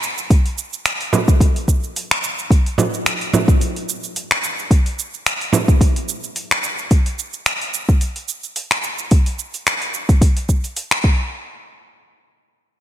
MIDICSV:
0, 0, Header, 1, 3, 480
1, 0, Start_track
1, 0, Tempo, 550459
1, 267, Time_signature, 4, 2, 24, 8
1, 11162, End_track
2, 0, Start_track
2, 0, Title_t, "Frame drum"
2, 983, Note_on_c, 9, 64, 84
2, 1070, Note_off_c, 9, 64, 0
2, 2423, Note_on_c, 9, 64, 76
2, 2511, Note_off_c, 9, 64, 0
2, 2908, Note_on_c, 9, 64, 84
2, 2995, Note_off_c, 9, 64, 0
2, 4819, Note_on_c, 9, 64, 85
2, 4906, Note_off_c, 9, 64, 0
2, 11162, End_track
3, 0, Start_track
3, 0, Title_t, "Drums"
3, 26, Note_on_c, 9, 82, 81
3, 113, Note_off_c, 9, 82, 0
3, 156, Note_on_c, 9, 82, 47
3, 244, Note_off_c, 9, 82, 0
3, 265, Note_on_c, 9, 36, 121
3, 266, Note_on_c, 9, 46, 61
3, 266, Note_on_c, 9, 82, 32
3, 353, Note_off_c, 9, 36, 0
3, 353, Note_off_c, 9, 46, 0
3, 353, Note_off_c, 9, 82, 0
3, 398, Note_on_c, 9, 46, 45
3, 485, Note_off_c, 9, 46, 0
3, 506, Note_on_c, 9, 82, 79
3, 593, Note_off_c, 9, 82, 0
3, 638, Note_on_c, 9, 82, 48
3, 725, Note_off_c, 9, 82, 0
3, 746, Note_on_c, 9, 26, 70
3, 746, Note_on_c, 9, 46, 60
3, 746, Note_on_c, 9, 82, 35
3, 833, Note_off_c, 9, 26, 0
3, 833, Note_off_c, 9, 46, 0
3, 834, Note_off_c, 9, 82, 0
3, 877, Note_on_c, 9, 46, 44
3, 965, Note_off_c, 9, 46, 0
3, 988, Note_on_c, 9, 82, 75
3, 1076, Note_off_c, 9, 82, 0
3, 1116, Note_on_c, 9, 36, 106
3, 1119, Note_on_c, 9, 82, 52
3, 1203, Note_off_c, 9, 36, 0
3, 1207, Note_off_c, 9, 82, 0
3, 1225, Note_on_c, 9, 36, 102
3, 1231, Note_on_c, 9, 46, 61
3, 1232, Note_on_c, 9, 82, 36
3, 1312, Note_off_c, 9, 36, 0
3, 1319, Note_off_c, 9, 46, 0
3, 1319, Note_off_c, 9, 82, 0
3, 1362, Note_on_c, 9, 46, 40
3, 1449, Note_off_c, 9, 46, 0
3, 1465, Note_on_c, 9, 36, 60
3, 1470, Note_on_c, 9, 82, 81
3, 1552, Note_off_c, 9, 36, 0
3, 1557, Note_off_c, 9, 82, 0
3, 1600, Note_on_c, 9, 82, 48
3, 1688, Note_off_c, 9, 82, 0
3, 1712, Note_on_c, 9, 46, 67
3, 1712, Note_on_c, 9, 82, 35
3, 1799, Note_off_c, 9, 46, 0
3, 1799, Note_off_c, 9, 82, 0
3, 1842, Note_on_c, 9, 26, 80
3, 1842, Note_on_c, 9, 46, 42
3, 1930, Note_off_c, 9, 26, 0
3, 1930, Note_off_c, 9, 46, 0
3, 1951, Note_on_c, 9, 82, 78
3, 2038, Note_off_c, 9, 82, 0
3, 2081, Note_on_c, 9, 82, 50
3, 2168, Note_off_c, 9, 82, 0
3, 2185, Note_on_c, 9, 36, 112
3, 2194, Note_on_c, 9, 46, 57
3, 2194, Note_on_c, 9, 82, 31
3, 2272, Note_off_c, 9, 36, 0
3, 2281, Note_off_c, 9, 46, 0
3, 2281, Note_off_c, 9, 82, 0
3, 2323, Note_on_c, 9, 46, 44
3, 2410, Note_off_c, 9, 46, 0
3, 2430, Note_on_c, 9, 82, 76
3, 2517, Note_off_c, 9, 82, 0
3, 2562, Note_on_c, 9, 82, 41
3, 2649, Note_off_c, 9, 82, 0
3, 2671, Note_on_c, 9, 26, 74
3, 2671, Note_on_c, 9, 46, 61
3, 2671, Note_on_c, 9, 82, 33
3, 2758, Note_off_c, 9, 26, 0
3, 2758, Note_off_c, 9, 46, 0
3, 2758, Note_off_c, 9, 82, 0
3, 2802, Note_on_c, 9, 46, 44
3, 2889, Note_off_c, 9, 46, 0
3, 2911, Note_on_c, 9, 82, 75
3, 2998, Note_off_c, 9, 82, 0
3, 3035, Note_on_c, 9, 36, 111
3, 3041, Note_on_c, 9, 82, 47
3, 3122, Note_off_c, 9, 36, 0
3, 3128, Note_off_c, 9, 82, 0
3, 3151, Note_on_c, 9, 46, 67
3, 3151, Note_on_c, 9, 82, 35
3, 3238, Note_off_c, 9, 46, 0
3, 3238, Note_off_c, 9, 82, 0
3, 3282, Note_on_c, 9, 46, 40
3, 3370, Note_off_c, 9, 46, 0
3, 3391, Note_on_c, 9, 82, 75
3, 3478, Note_off_c, 9, 82, 0
3, 3519, Note_on_c, 9, 82, 44
3, 3607, Note_off_c, 9, 82, 0
3, 3629, Note_on_c, 9, 46, 69
3, 3629, Note_on_c, 9, 82, 34
3, 3716, Note_off_c, 9, 46, 0
3, 3716, Note_off_c, 9, 82, 0
3, 3758, Note_on_c, 9, 26, 80
3, 3758, Note_on_c, 9, 46, 43
3, 3845, Note_off_c, 9, 26, 0
3, 3845, Note_off_c, 9, 46, 0
3, 3869, Note_on_c, 9, 82, 77
3, 3956, Note_off_c, 9, 82, 0
3, 4001, Note_on_c, 9, 82, 45
3, 4088, Note_off_c, 9, 82, 0
3, 4105, Note_on_c, 9, 36, 113
3, 4108, Note_on_c, 9, 46, 63
3, 4108, Note_on_c, 9, 82, 30
3, 4192, Note_off_c, 9, 36, 0
3, 4195, Note_off_c, 9, 46, 0
3, 4196, Note_off_c, 9, 82, 0
3, 4239, Note_on_c, 9, 46, 44
3, 4326, Note_off_c, 9, 46, 0
3, 4350, Note_on_c, 9, 82, 74
3, 4438, Note_off_c, 9, 82, 0
3, 4481, Note_on_c, 9, 82, 45
3, 4568, Note_off_c, 9, 82, 0
3, 4591, Note_on_c, 9, 26, 73
3, 4591, Note_on_c, 9, 46, 69
3, 4591, Note_on_c, 9, 82, 31
3, 4678, Note_off_c, 9, 26, 0
3, 4678, Note_off_c, 9, 46, 0
3, 4678, Note_off_c, 9, 82, 0
3, 4720, Note_on_c, 9, 46, 43
3, 4807, Note_off_c, 9, 46, 0
3, 4827, Note_on_c, 9, 82, 79
3, 4914, Note_off_c, 9, 82, 0
3, 4955, Note_on_c, 9, 36, 106
3, 4958, Note_on_c, 9, 82, 46
3, 5042, Note_off_c, 9, 36, 0
3, 5046, Note_off_c, 9, 82, 0
3, 5064, Note_on_c, 9, 36, 92
3, 5069, Note_on_c, 9, 46, 68
3, 5069, Note_on_c, 9, 82, 31
3, 5151, Note_off_c, 9, 36, 0
3, 5156, Note_off_c, 9, 46, 0
3, 5157, Note_off_c, 9, 82, 0
3, 5200, Note_on_c, 9, 46, 46
3, 5287, Note_off_c, 9, 46, 0
3, 5307, Note_on_c, 9, 82, 71
3, 5394, Note_off_c, 9, 82, 0
3, 5438, Note_on_c, 9, 82, 46
3, 5525, Note_off_c, 9, 82, 0
3, 5545, Note_on_c, 9, 46, 67
3, 5545, Note_on_c, 9, 82, 33
3, 5632, Note_off_c, 9, 46, 0
3, 5632, Note_off_c, 9, 82, 0
3, 5679, Note_on_c, 9, 26, 77
3, 5679, Note_on_c, 9, 46, 47
3, 5766, Note_off_c, 9, 26, 0
3, 5766, Note_off_c, 9, 46, 0
3, 5786, Note_on_c, 9, 82, 74
3, 5873, Note_off_c, 9, 82, 0
3, 5916, Note_on_c, 9, 82, 46
3, 6003, Note_off_c, 9, 82, 0
3, 6024, Note_on_c, 9, 46, 70
3, 6025, Note_on_c, 9, 36, 110
3, 6025, Note_on_c, 9, 82, 29
3, 6112, Note_off_c, 9, 36, 0
3, 6112, Note_off_c, 9, 46, 0
3, 6112, Note_off_c, 9, 82, 0
3, 6157, Note_on_c, 9, 46, 51
3, 6244, Note_off_c, 9, 46, 0
3, 6267, Note_on_c, 9, 82, 73
3, 6354, Note_off_c, 9, 82, 0
3, 6395, Note_on_c, 9, 82, 42
3, 6482, Note_off_c, 9, 82, 0
3, 6506, Note_on_c, 9, 26, 77
3, 6506, Note_on_c, 9, 46, 64
3, 6506, Note_on_c, 9, 82, 30
3, 6593, Note_off_c, 9, 26, 0
3, 6593, Note_off_c, 9, 46, 0
3, 6593, Note_off_c, 9, 82, 0
3, 6640, Note_on_c, 9, 46, 48
3, 6727, Note_off_c, 9, 46, 0
3, 6747, Note_on_c, 9, 82, 75
3, 6834, Note_off_c, 9, 82, 0
3, 6877, Note_on_c, 9, 36, 102
3, 6877, Note_on_c, 9, 82, 47
3, 6964, Note_off_c, 9, 36, 0
3, 6964, Note_off_c, 9, 82, 0
3, 6985, Note_on_c, 9, 46, 71
3, 6985, Note_on_c, 9, 82, 32
3, 7072, Note_off_c, 9, 46, 0
3, 7073, Note_off_c, 9, 82, 0
3, 7115, Note_on_c, 9, 46, 46
3, 7202, Note_off_c, 9, 46, 0
3, 7223, Note_on_c, 9, 82, 71
3, 7310, Note_off_c, 9, 82, 0
3, 7356, Note_on_c, 9, 82, 41
3, 7443, Note_off_c, 9, 82, 0
3, 7464, Note_on_c, 9, 46, 73
3, 7464, Note_on_c, 9, 82, 30
3, 7551, Note_off_c, 9, 46, 0
3, 7551, Note_off_c, 9, 82, 0
3, 7595, Note_on_c, 9, 26, 77
3, 7595, Note_on_c, 9, 46, 46
3, 7682, Note_off_c, 9, 26, 0
3, 7682, Note_off_c, 9, 46, 0
3, 7704, Note_on_c, 9, 82, 73
3, 7791, Note_off_c, 9, 82, 0
3, 7834, Note_on_c, 9, 82, 46
3, 7921, Note_off_c, 9, 82, 0
3, 7945, Note_on_c, 9, 46, 66
3, 7945, Note_on_c, 9, 82, 31
3, 7948, Note_on_c, 9, 36, 117
3, 8032, Note_off_c, 9, 46, 0
3, 8032, Note_off_c, 9, 82, 0
3, 8035, Note_off_c, 9, 36, 0
3, 8077, Note_on_c, 9, 46, 51
3, 8164, Note_off_c, 9, 46, 0
3, 8187, Note_on_c, 9, 82, 72
3, 8274, Note_off_c, 9, 82, 0
3, 8319, Note_on_c, 9, 46, 34
3, 8320, Note_on_c, 9, 82, 46
3, 8407, Note_off_c, 9, 46, 0
3, 8407, Note_off_c, 9, 82, 0
3, 8430, Note_on_c, 9, 26, 76
3, 8430, Note_on_c, 9, 46, 70
3, 8430, Note_on_c, 9, 82, 32
3, 8517, Note_off_c, 9, 26, 0
3, 8517, Note_off_c, 9, 46, 0
3, 8517, Note_off_c, 9, 82, 0
3, 8561, Note_on_c, 9, 46, 50
3, 8648, Note_off_c, 9, 46, 0
3, 8666, Note_on_c, 9, 82, 75
3, 8753, Note_off_c, 9, 82, 0
3, 8798, Note_on_c, 9, 36, 106
3, 8799, Note_on_c, 9, 46, 35
3, 8799, Note_on_c, 9, 82, 45
3, 8885, Note_off_c, 9, 36, 0
3, 8886, Note_off_c, 9, 46, 0
3, 8887, Note_off_c, 9, 82, 0
3, 8907, Note_on_c, 9, 36, 99
3, 8910, Note_on_c, 9, 46, 75
3, 8910, Note_on_c, 9, 82, 34
3, 8995, Note_off_c, 9, 36, 0
3, 8997, Note_off_c, 9, 46, 0
3, 8997, Note_off_c, 9, 82, 0
3, 9039, Note_on_c, 9, 46, 45
3, 9127, Note_off_c, 9, 46, 0
3, 9147, Note_on_c, 9, 36, 57
3, 9147, Note_on_c, 9, 82, 69
3, 9234, Note_off_c, 9, 36, 0
3, 9234, Note_off_c, 9, 82, 0
3, 9279, Note_on_c, 9, 46, 34
3, 9279, Note_on_c, 9, 82, 42
3, 9366, Note_off_c, 9, 46, 0
3, 9366, Note_off_c, 9, 82, 0
3, 9387, Note_on_c, 9, 46, 71
3, 9387, Note_on_c, 9, 82, 33
3, 9474, Note_off_c, 9, 46, 0
3, 9475, Note_off_c, 9, 82, 0
3, 9516, Note_on_c, 9, 26, 84
3, 9516, Note_on_c, 9, 46, 48
3, 9603, Note_off_c, 9, 26, 0
3, 9603, Note_off_c, 9, 46, 0
3, 9627, Note_on_c, 9, 36, 108
3, 9714, Note_off_c, 9, 36, 0
3, 11162, End_track
0, 0, End_of_file